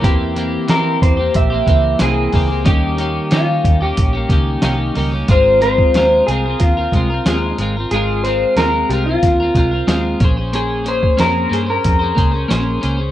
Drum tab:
HH |x-x-x-x-x-x-x-o-|x-x-x-x-x-x-x-o-|x-x-x-x-x-x-x-x-|x-x-x-x-x-x-x-x-|
SD |----o-------o---|----o-------o---|----o---o---o---|----o---o---o---|
BD |o-----o-o-o---o-|o-----o-o-o-----|o--o----o-o-----|--------o-o---o-|

HH |x-x-x-x-x-x-x-x-|
SD |----o---o---o---|
BD |---o----o-o-----|